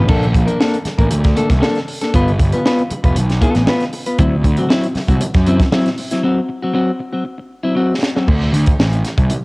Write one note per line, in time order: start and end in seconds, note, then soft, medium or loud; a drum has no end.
0.08 0.32 A#1 loud
0.08 0.25 A#3 medium
0.08 0.25 D4 medium
0.08 0.25 A4 medium
0.08 kick loud
0.08 crash medium
0.23 closed hi-hat soft
0.33 0.47 A#1 loud
0.33 muted clean electric guitar stroke soft
0.33 kick medium
0.33 closed hi-hat medium
0.47 0.59 A#3 medium
0.47 0.59 D4 medium
0.47 0.59 A#4 medium
0.47 closed hi-hat medium
0.60 0.76 A#3 medium
0.60 0.76 D4 medium
0.60 0.77 A4 medium
0.60 snare loud
0.74 closed hi-hat soft
0.85 muted picked electric bass stroke soft
0.85 muted clean electric guitar stroke soft
0.85 snare soft
0.85 closed hi-hat medium
0.98 1.10 A1 medium
0.98 1.09 A#3 soft
0.98 1.09 D4 soft
0.98 1.10 A#4 medium
0.98 kick medium
0.98 closed hi-hat soft
1.10 1.34 D2 medium
1.10 muted clean electric guitar stroke soft
1.10 closed hi-hat loud
1.24 muted clean electric guitar stroke soft
1.24 kick loud
1.24 snare soft
1.24 closed hi-hat soft
1.36 1.52 A#3 medium
1.36 1.49 D4 medium
1.36 1.49 A4 loud
1.36 closed hi-hat medium
1.50 1.61 C2 medium
1.50 muted clean electric guitar stroke soft
1.50 kick medium
1.50 snare soft
1.50 closed hi-hat soft
1.61 1.78 A#3 medium
1.61 1.78 D4 medium
1.61 1.78 A4 loud
1.61 snare loud
1.75 snare soft
1.75 closed hi-hat soft
1.88 muted clean electric guitar stroke soft
1.88 open hi-hat medium
2.01 2.14 A#3 soft
2.01 2.13 D4 medium
2.01 2.13 A4 medium
2.01 snare soft
2.01 closed hi-hat medium
2.14 2.37 G1 loud
2.14 2.30 B3 medium
2.14 2.30 F4 medium
2.14 2.31 B4 loud
2.14 kick loud
2.14 closed hi-hat medium
2.28 closed hi-hat soft
2.39 2.52 G1 loud
2.39 muted clean electric guitar stroke soft
2.39 kick medium
2.39 closed hi-hat medium
2.52 2.64 B3 medium
2.52 2.65 F4 medium
2.52 2.64 B4 medium
2.52 closed hi-hat soft
2.65 2.81 B3 loud
2.65 2.81 F4 loud
2.65 2.82 B4 loud
2.65 snare medium
2.78 closed hi-hat soft
2.90 muted picked electric bass stroke soft
2.90 muted clean electric guitar stroke soft
2.90 closed hi-hat medium
3.04 3.15 F1 medium
3.04 3.16 B3 soft
3.04 3.16 F4 medium
3.04 3.16 B4 medium
3.04 kick medium
3.04 closed hi-hat soft
3.16 3.39 B1 medium
3.16 closed hi-hat loud
3.29 muted clean electric guitar stroke soft
3.29 snare soft
3.29 closed hi-hat soft
3.41 3.62 B3 medium
3.41 3.55 F4 medium
3.41 3.55 A4 medium
3.41 kick medium
3.41 closed hi-hat medium
3.55 3.66 A1 medium
3.55 muted clean electric guitar stroke soft
3.55 snare soft
3.55 closed hi-hat soft
3.67 3.83 B3 medium
3.67 3.84 F4 medium
3.67 3.84 B4 medium
3.67 snare loud
3.80 snare soft
3.80 closed hi-hat soft
3.93 muted clean electric guitar stroke soft
3.93 open hi-hat medium
4.06 4.18 B3 medium
4.06 4.18 F4 medium
4.06 4.18 B4 medium
4.06 closed hi-hat medium
4.18 4.42 D2 loud
4.18 4.34 F#3 medium
4.18 4.35 C4 medium
4.18 4.35 E4 medium
4.18 kick loud
4.18 closed hi-hat medium
4.44 4.56 D2 medium
4.44 muted clean electric guitar stroke soft
4.44 kick medium
4.44 closed hi-hat medium
4.57 4.67 F#3 medium
4.57 4.69 C4 medium
4.57 4.69 F#4 medium
4.57 closed hi-hat soft
4.69 4.85 F#3 medium
4.69 4.86 C4 medium
4.69 4.86 E4 loud
4.69 snare loud
4.83 closed hi-hat soft
4.95 muted picked electric bass stroke medium
4.95 muted clean electric guitar stroke soft
4.95 snare soft
4.95 open hi-hat soft
5.08 5.19 C2 medium
5.08 5.20 F#3 soft
5.08 5.20 C4 soft
5.08 5.20 F#4 medium
5.08 kick medium
5.08 closed hi-hat soft
5.21 muted picked electric bass stroke soft
5.21 muted clean electric guitar stroke soft
5.21 closed hi-hat loud
5.34 5.57 F#2 medium
5.34 muted clean electric guitar stroke soft
5.34 kick loud
5.34 snare soft
5.34 closed hi-hat soft
5.46 5.63 F#3 medium
5.46 5.61 C4 loud
5.46 5.60 E4 medium
5.46 closed hi-hat medium
5.60 muted clean electric guitar stroke soft
5.60 kick loud
5.60 snare soft
5.60 closed hi-hat soft
5.72 5.88 F#3 medium
5.72 5.88 C4 loud
5.72 5.88 E4 loud
5.72 snare loud
5.86 snare soft
5.86 closed hi-hat soft
5.98 muted clean electric guitar stroke soft
5.98 open hi-hat medium
6.11 6.22 F#3 medium
6.11 6.23 C4 medium
6.11 6.22 E4 medium
6.11 snare soft
6.11 closed hi-hat medium
6.23 6.39 F#3 medium
6.23 6.40 C4 loud
6.23 6.40 F#4 medium
6.49 muted clean electric guitar stroke soft
6.62 6.72 F#3 medium
6.62 6.73 C4 medium
6.62 6.74 F#4 medium
6.73 6.90 F#3 medium
6.73 6.90 C4 medium
6.73 6.91 F#4 loud
6.99 muted clean electric guitar stroke soft
7.12 7.24 F#3 soft
7.12 7.24 C4 medium
7.12 7.24 F#4 medium
7.25 muted clean electric guitar stroke soft
7.38 muted clean electric guitar stroke medium
7.63 7.74 F#3 medium
7.63 7.75 C4 medium
7.63 7.76 E4 medium
7.75 7.92 F#3 medium
7.75 7.92 C4 medium
7.75 7.93 F#4 medium
8.02 muted clean electric guitar stroke soft
8.02 snare loud
8.16 8.28 F#3 medium
8.16 8.27 C4 medium
8.16 8.27 F#4 medium
8.16 snare medium
8.28 8.51 D2 loud
8.28 kick loud
8.28 crash loud
8.53 8.65 D2 loud
8.53 closed hi-hat medium
8.66 kick loud
8.66 closed hi-hat medium
8.79 9.02 A1 medium
8.79 snare loud
8.93 closed hi-hat soft
9.05 snare soft
9.05 closed hi-hat medium
9.18 9.29 C2 medium
9.18 kick medium
9.18 closed hi-hat soft
9.30 closed hi-hat loud